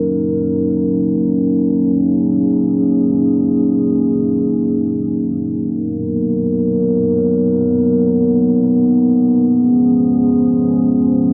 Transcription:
analog synth pad
Already playing: F#3 A#3 C#4 D#4 A#4
1.94 G#4
5.72 F#3 B3 A#4
9.50 F3 G#3 C#4 G#4

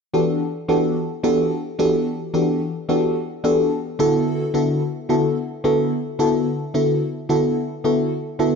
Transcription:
fm electric piano
0.14 E3 B3 D4 F#4 G4 A4
0.68 E3 B3 D4 F#4 G4 A4
1.23 E3 B3 D4 F#4 G4 A4
1.79 E3 B3 D4 F#4 G4 A4
2.34 E3 B3 D4 F#4 G4 A4
2.89 E3 B3 D4 F#4 G4 A4
3.44 E3 B3 D4 F#4 G4 A4
3.99 D3 B3 E4 F#4 A4
4.54 D3 B3 E4 F#4 A4
5.09 D3 B3 E4 F#4 A4
5.64 D3 B3 E4 F#4 A4
6.19 D3 B3 E4 F#4 A4
6.74 D3 B3 E4 F#4 A4
7.29 D3 B3 E4 F#4 A4
7.84 D3 B3 E4 F#4 A4
8.39 D3 B3 E4 F#4 A4

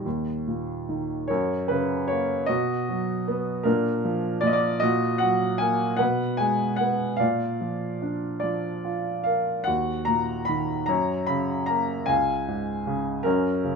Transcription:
grand piano
0.06 D#2
0.47 A#2
0.89 D#3
1.28 F#2 A#4 C#5
1.68 C#3 B4
2.08 A#3 C#5
2.46 B2 F#4 D#5
2.89 F#3
3.28 B3
3.63 A#2 D4 A#4
4.05 F3
4.41 A#2 D5
4.47 D#5
4.53 D5
4.80 A#2 F#4 D#5
5.18 F#3 F#5
5.58 A#3 G#5
5.97 B2 B4 F#5
6.37 G#3 G#5
6.76 F#5
6.80 B3
7.17 D5 F5
7.21 A#2
7.61 F3
8.02 D4
8.40 F3 D5
8.85 F4
9.24 A#4 F5
9.64 D#2 F#4 F#5
10.05 A#2 A#5
10.45 D#3 B5
10.86 F#2 C#5 A#5
11.27 C#3 B5
11.66 A#3 A#5
12.06 C#2 F5 G#5
12.48 G#2
12.87 C#3
13.23 F#2 C#4 A#4
13.64 C#3

